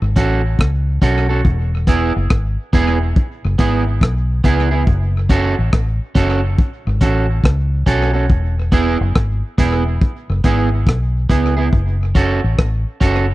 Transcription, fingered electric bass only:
0, 0, Header, 1, 2, 480
1, 0, Start_track
1, 0, Key_signature, 3, "minor"
1, 0, Tempo, 856409
1, 812, Time_signature, 4, 2, 24, 8
1, 7478, End_track
2, 0, Start_track
2, 0, Title_t, "Fingered electric bass"
2, 0, Program_c, 0, 33
2, 11, Note_on_c, 0, 32, 92
2, 88, Note_off_c, 0, 32, 0
2, 95, Note_on_c, 0, 33, 101
2, 313, Note_off_c, 0, 33, 0
2, 334, Note_on_c, 0, 37, 93
2, 553, Note_off_c, 0, 37, 0
2, 573, Note_on_c, 0, 35, 93
2, 792, Note_off_c, 0, 35, 0
2, 815, Note_on_c, 0, 28, 108
2, 1183, Note_off_c, 0, 28, 0
2, 1213, Note_on_c, 0, 30, 91
2, 1289, Note_off_c, 0, 30, 0
2, 1297, Note_on_c, 0, 32, 86
2, 1434, Note_off_c, 0, 32, 0
2, 1534, Note_on_c, 0, 28, 89
2, 1752, Note_off_c, 0, 28, 0
2, 1933, Note_on_c, 0, 30, 97
2, 2009, Note_off_c, 0, 30, 0
2, 2015, Note_on_c, 0, 32, 101
2, 2233, Note_off_c, 0, 32, 0
2, 2253, Note_on_c, 0, 35, 100
2, 2472, Note_off_c, 0, 35, 0
2, 2492, Note_on_c, 0, 37, 91
2, 2712, Note_off_c, 0, 37, 0
2, 2734, Note_on_c, 0, 30, 104
2, 3102, Note_off_c, 0, 30, 0
2, 3132, Note_on_c, 0, 33, 94
2, 3209, Note_off_c, 0, 33, 0
2, 3215, Note_on_c, 0, 33, 92
2, 3353, Note_off_c, 0, 33, 0
2, 3452, Note_on_c, 0, 30, 92
2, 3672, Note_off_c, 0, 30, 0
2, 3850, Note_on_c, 0, 32, 104
2, 3927, Note_off_c, 0, 32, 0
2, 3934, Note_on_c, 0, 33, 101
2, 4153, Note_off_c, 0, 33, 0
2, 4172, Note_on_c, 0, 37, 101
2, 4391, Note_off_c, 0, 37, 0
2, 4413, Note_on_c, 0, 35, 81
2, 4632, Note_off_c, 0, 35, 0
2, 4653, Note_on_c, 0, 28, 98
2, 5022, Note_off_c, 0, 28, 0
2, 5049, Note_on_c, 0, 30, 90
2, 5127, Note_off_c, 0, 30, 0
2, 5136, Note_on_c, 0, 32, 100
2, 5273, Note_off_c, 0, 32, 0
2, 5375, Note_on_c, 0, 28, 97
2, 5593, Note_off_c, 0, 28, 0
2, 5772, Note_on_c, 0, 30, 88
2, 5848, Note_off_c, 0, 30, 0
2, 5856, Note_on_c, 0, 32, 103
2, 6074, Note_off_c, 0, 32, 0
2, 6094, Note_on_c, 0, 35, 87
2, 6313, Note_off_c, 0, 35, 0
2, 6335, Note_on_c, 0, 37, 77
2, 6553, Note_off_c, 0, 37, 0
2, 6577, Note_on_c, 0, 30, 91
2, 6944, Note_off_c, 0, 30, 0
2, 6974, Note_on_c, 0, 33, 90
2, 7050, Note_off_c, 0, 33, 0
2, 7058, Note_on_c, 0, 33, 90
2, 7195, Note_off_c, 0, 33, 0
2, 7296, Note_on_c, 0, 30, 85
2, 7478, Note_off_c, 0, 30, 0
2, 7478, End_track
0, 0, End_of_file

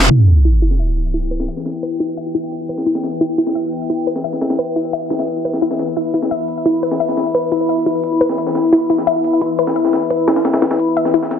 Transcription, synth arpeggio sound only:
0, 0, Header, 1, 2, 480
1, 0, Start_track
1, 0, Key_signature, 1, "minor"
1, 0, Tempo, 344828
1, 145, Time_signature, 4, 2, 24, 8
1, 15862, End_track
2, 0, Start_track
2, 0, Title_t, "Synth arpeggio sound"
2, 0, Program_c, 0, 84
2, 145, Note_on_c, 0, 64, 79
2, 319, Note_off_c, 0, 64, 0
2, 625, Note_on_c, 0, 64, 73
2, 741, Note_off_c, 0, 64, 0
2, 864, Note_on_c, 0, 64, 73
2, 934, Note_off_c, 0, 64, 0
2, 1104, Note_on_c, 0, 76, 98
2, 1174, Note_off_c, 0, 76, 0
2, 1585, Note_on_c, 0, 64, 73
2, 1654, Note_off_c, 0, 64, 0
2, 1824, Note_on_c, 0, 71, 79
2, 1999, Note_off_c, 0, 71, 0
2, 2065, Note_on_c, 0, 76, 80
2, 2239, Note_off_c, 0, 76, 0
2, 2545, Note_on_c, 0, 71, 79
2, 2661, Note_off_c, 0, 71, 0
2, 2785, Note_on_c, 0, 64, 77
2, 2854, Note_off_c, 0, 64, 0
2, 3025, Note_on_c, 0, 76, 82
2, 3141, Note_off_c, 0, 76, 0
2, 3265, Note_on_c, 0, 64, 73
2, 3335, Note_off_c, 0, 64, 0
2, 3746, Note_on_c, 0, 71, 76
2, 3919, Note_off_c, 0, 71, 0
2, 3985, Note_on_c, 0, 64, 77
2, 4159, Note_off_c, 0, 64, 0
2, 4465, Note_on_c, 0, 64, 79
2, 4581, Note_off_c, 0, 64, 0
2, 4705, Note_on_c, 0, 64, 75
2, 4775, Note_off_c, 0, 64, 0
2, 4945, Note_on_c, 0, 76, 100
2, 5014, Note_off_c, 0, 76, 0
2, 5425, Note_on_c, 0, 64, 73
2, 5495, Note_off_c, 0, 64, 0
2, 5665, Note_on_c, 0, 71, 79
2, 5839, Note_off_c, 0, 71, 0
2, 5905, Note_on_c, 0, 76, 80
2, 6079, Note_off_c, 0, 76, 0
2, 6385, Note_on_c, 0, 71, 79
2, 6501, Note_off_c, 0, 71, 0
2, 6625, Note_on_c, 0, 64, 75
2, 6694, Note_off_c, 0, 64, 0
2, 6865, Note_on_c, 0, 76, 82
2, 6981, Note_off_c, 0, 76, 0
2, 7105, Note_on_c, 0, 64, 72
2, 7174, Note_off_c, 0, 64, 0
2, 7585, Note_on_c, 0, 71, 77
2, 7759, Note_off_c, 0, 71, 0
2, 7824, Note_on_c, 0, 64, 77
2, 7998, Note_off_c, 0, 64, 0
2, 8304, Note_on_c, 0, 64, 75
2, 8421, Note_off_c, 0, 64, 0
2, 8545, Note_on_c, 0, 64, 78
2, 8614, Note_off_c, 0, 64, 0
2, 8784, Note_on_c, 0, 76, 98
2, 8854, Note_off_c, 0, 76, 0
2, 9264, Note_on_c, 0, 64, 71
2, 9334, Note_off_c, 0, 64, 0
2, 9505, Note_on_c, 0, 71, 77
2, 9679, Note_off_c, 0, 71, 0
2, 9745, Note_on_c, 0, 76, 84
2, 9919, Note_off_c, 0, 76, 0
2, 10224, Note_on_c, 0, 71, 76
2, 10341, Note_off_c, 0, 71, 0
2, 10464, Note_on_c, 0, 64, 77
2, 10534, Note_off_c, 0, 64, 0
2, 10705, Note_on_c, 0, 76, 85
2, 10821, Note_off_c, 0, 76, 0
2, 10945, Note_on_c, 0, 64, 74
2, 11014, Note_off_c, 0, 64, 0
2, 11425, Note_on_c, 0, 71, 80
2, 11599, Note_off_c, 0, 71, 0
2, 11665, Note_on_c, 0, 64, 81
2, 11839, Note_off_c, 0, 64, 0
2, 12145, Note_on_c, 0, 64, 78
2, 12261, Note_off_c, 0, 64, 0
2, 12385, Note_on_c, 0, 64, 76
2, 12455, Note_off_c, 0, 64, 0
2, 12625, Note_on_c, 0, 76, 103
2, 12694, Note_off_c, 0, 76, 0
2, 13105, Note_on_c, 0, 64, 74
2, 13174, Note_off_c, 0, 64, 0
2, 13345, Note_on_c, 0, 71, 77
2, 13519, Note_off_c, 0, 71, 0
2, 13585, Note_on_c, 0, 76, 81
2, 13759, Note_off_c, 0, 76, 0
2, 14065, Note_on_c, 0, 71, 75
2, 14181, Note_off_c, 0, 71, 0
2, 14305, Note_on_c, 0, 64, 73
2, 14374, Note_off_c, 0, 64, 0
2, 14545, Note_on_c, 0, 76, 85
2, 14661, Note_off_c, 0, 76, 0
2, 14784, Note_on_c, 0, 64, 76
2, 14959, Note_off_c, 0, 64, 0
2, 15265, Note_on_c, 0, 76, 105
2, 15381, Note_off_c, 0, 76, 0
2, 15505, Note_on_c, 0, 64, 80
2, 15679, Note_off_c, 0, 64, 0
2, 15862, End_track
0, 0, End_of_file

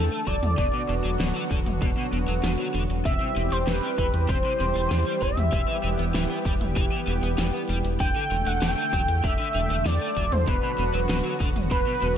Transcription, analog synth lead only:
0, 0, Header, 1, 2, 480
1, 0, Start_track
1, 0, Tempo, 618557
1, 449, Time_signature, 4, 2, 24, 8
1, 9450, End_track
2, 0, Start_track
2, 0, Title_t, "Analog synth lead"
2, 0, Program_c, 0, 81
2, 0, Note_on_c, 0, 69, 104
2, 207, Note_on_c, 0, 74, 96
2, 219, Note_off_c, 0, 69, 0
2, 928, Note_off_c, 0, 74, 0
2, 2368, Note_on_c, 0, 76, 118
2, 2730, Note_on_c, 0, 72, 96
2, 2742, Note_off_c, 0, 76, 0
2, 2850, Note_on_c, 0, 71, 96
2, 2862, Note_off_c, 0, 72, 0
2, 3329, Note_on_c, 0, 72, 100
2, 3341, Note_off_c, 0, 71, 0
2, 4050, Note_on_c, 0, 76, 100
2, 4062, Note_off_c, 0, 72, 0
2, 4770, Note_off_c, 0, 76, 0
2, 6208, Note_on_c, 0, 79, 120
2, 6570, Note_on_c, 0, 78, 101
2, 6581, Note_off_c, 0, 79, 0
2, 6685, Note_off_c, 0, 78, 0
2, 6689, Note_on_c, 0, 79, 109
2, 7169, Note_on_c, 0, 76, 108
2, 7180, Note_off_c, 0, 79, 0
2, 7651, Note_on_c, 0, 74, 102
2, 7662, Note_off_c, 0, 76, 0
2, 8010, Note_on_c, 0, 72, 90
2, 8022, Note_off_c, 0, 74, 0
2, 8132, Note_on_c, 0, 71, 87
2, 8144, Note_off_c, 0, 72, 0
2, 8851, Note_off_c, 0, 71, 0
2, 9090, Note_on_c, 0, 71, 118
2, 9450, Note_off_c, 0, 71, 0
2, 9450, End_track
0, 0, End_of_file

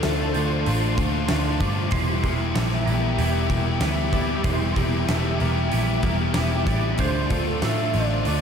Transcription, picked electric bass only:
0, 0, Header, 1, 2, 480
1, 0, Start_track
1, 0, Tempo, 633580
1, 1463, Time_signature, 4, 2, 24, 8
1, 6371, End_track
2, 0, Start_track
2, 0, Title_t, "Picked electric bass"
2, 0, Program_c, 0, 34
2, 33, Note_on_c, 0, 38, 91
2, 251, Note_off_c, 0, 38, 0
2, 272, Note_on_c, 0, 38, 84
2, 490, Note_off_c, 0, 38, 0
2, 510, Note_on_c, 0, 33, 84
2, 730, Note_off_c, 0, 33, 0
2, 745, Note_on_c, 0, 38, 87
2, 967, Note_off_c, 0, 38, 0
2, 991, Note_on_c, 0, 38, 92
2, 1210, Note_off_c, 0, 38, 0
2, 1218, Note_on_c, 0, 43, 80
2, 1443, Note_off_c, 0, 43, 0
2, 1457, Note_on_c, 0, 28, 92
2, 1682, Note_off_c, 0, 28, 0
2, 1695, Note_on_c, 0, 28, 73
2, 1921, Note_off_c, 0, 28, 0
2, 1941, Note_on_c, 0, 34, 91
2, 2164, Note_off_c, 0, 34, 0
2, 2176, Note_on_c, 0, 34, 82
2, 2401, Note_off_c, 0, 34, 0
2, 2412, Note_on_c, 0, 28, 91
2, 2639, Note_off_c, 0, 28, 0
2, 2655, Note_on_c, 0, 28, 90
2, 2881, Note_off_c, 0, 28, 0
2, 2885, Note_on_c, 0, 38, 90
2, 3343, Note_off_c, 0, 38, 0
2, 3368, Note_on_c, 0, 28, 91
2, 3597, Note_off_c, 0, 28, 0
2, 3611, Note_on_c, 0, 28, 82
2, 3839, Note_off_c, 0, 28, 0
2, 3853, Note_on_c, 0, 28, 84
2, 4080, Note_off_c, 0, 28, 0
2, 4101, Note_on_c, 0, 28, 84
2, 4324, Note_off_c, 0, 28, 0
2, 4338, Note_on_c, 0, 34, 87
2, 4563, Note_off_c, 0, 34, 0
2, 4566, Note_on_c, 0, 28, 90
2, 4796, Note_off_c, 0, 28, 0
2, 4822, Note_on_c, 0, 28, 88
2, 5045, Note_off_c, 0, 28, 0
2, 5056, Note_on_c, 0, 33, 76
2, 5282, Note_off_c, 0, 33, 0
2, 5292, Note_on_c, 0, 38, 86
2, 5520, Note_off_c, 0, 38, 0
2, 5537, Note_on_c, 0, 38, 72
2, 5763, Note_off_c, 0, 38, 0
2, 5777, Note_on_c, 0, 45, 84
2, 6003, Note_off_c, 0, 45, 0
2, 6020, Note_on_c, 0, 33, 79
2, 6245, Note_off_c, 0, 33, 0
2, 6264, Note_on_c, 0, 38, 83
2, 6371, Note_off_c, 0, 38, 0
2, 6371, End_track
0, 0, End_of_file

